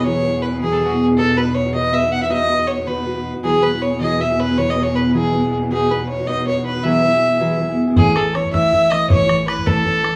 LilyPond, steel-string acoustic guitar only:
\new Staff \with { instrumentName = "Steel-string acoustic guitar" } { \time 6/8 \key e \major \tempo 4. = 106 <e fis b e' gis'>8 <fis b e' gis'>16 <b e' gis'>8 <b e' gis'>16 <e fis b e' gis'>8 <fis b e' gis'>16 <b e' gis'>8 <b e' gis'>16 | <b dis' fis' b'>8 <b dis' fis' b'>16 <dis' fis' b'>8 <dis' fis' b'>16 <b dis' fis' b'>8 <b dis' fis' b'>16 <dis' fis' b'>8 <dis' fis' b'>16 | <b dis' fis' b'>8 <b dis' fis' b'>16 <dis' fis' b'>8 <dis' fis' b'>16 <b dis' fis' b'>8 <b dis' fis' b'>16 <dis' fis' b'>8 <dis' fis' b'>16 | <e fis b e' gis'>8 <fis b e' gis'>16 <b e' gis'>8 <b e' gis'>16 <e fis b e' gis'>8 <fis b e' gis'>16 <b e' gis'>8 <b e' gis'>16 |
<e fis b e' gis'>8 <fis b e' gis'>16 <b e' gis'>8 <b e' gis'>16 <e fis b e' gis'>8 <fis b e' gis'>16 <b e' gis'>8 <b e' gis'>16 | <b dis' fis' b'>8 <b dis' fis' b'>16 <dis' fis' b'>8 <dis' fis' b'>16 <b dis' fis' b'>8 <b dis' fis' b'>16 <dis' fis' b'>8 <dis' fis' b'>16 | <e fis b e' gis'>8 <fis b e' gis'>16 <b e' gis'>8 <b e' gis'>16 <e fis b e' gis'>8 <fis b e' gis'>16 <b e' gis'>8 <b e' gis'>16 | <a, e a cis' e'>8 <e a cis' e'>8 <e a cis' e'>8 <a, e a cis' e'>8 <e a cis' e'>8 <e a cis' e'>8 |
<a, e a cis' e'>8 <e a cis' e'>8 <e a cis' e'>8 <a, e a cis' e'>8 <e a cis' e'>8 <e a cis' e'>8 | }